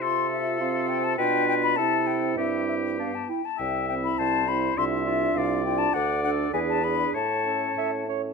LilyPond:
<<
  \new Staff \with { instrumentName = "Flute" } { \time 2/4 \key c \major \tempo 4 = 101 c'''8 e''8 f''8 g''16 a''16 | g''8 g''16 b''16 a''8 g''8 | e''8 e''8 f''16 a''16 g''16 a''16 | g''8 g''16 b''16 a''8 b''8 |
c'''8 e''8 f''8 g''16 a''16 | \key a \major fis''8 fis''8 gis''16 a''16 b''8 | a''4. r8 | }
  \new Staff \with { instrumentName = "Oboe" } { \time 2/4 \key c \major a'2 | b'4 a'4 | g'4. r8 | e''4 c''4 |
e''4 d''4 | \key a \major d''4 b'4 | cis''4. r8 | }
  \new Staff \with { instrumentName = "Clarinet" } { \time 2/4 \key c \major f'4 f'4 | f'4 e'4 | e'4 d'8 e'8 | r8 e'4 e'8 |
f'8 f'4 f'8 | \key a \major r8 a'8 gis'8 gis'8 | r8 a'8 e''8 cis''8 | }
  \new Staff \with { instrumentName = "French horn" } { \time 2/4 \key c \major f'4 c'4 | d'4 c'4 | c'4 b8 r8 | r8 c'4 c'8 |
d'8 d'4 d'8 | \key a \major r8 d'8 d'8 d'8 | r8 cis'4 cis'8 | }
  \new Staff \with { instrumentName = "Bassoon" } { \clef bass \time 2/4 \key c \major c2 | b,4 c4 | g,4. r8 | c,4 c,4 |
c,4 c,4 | \key a \major d,4 e,4 | a,4 a,4 | }
>>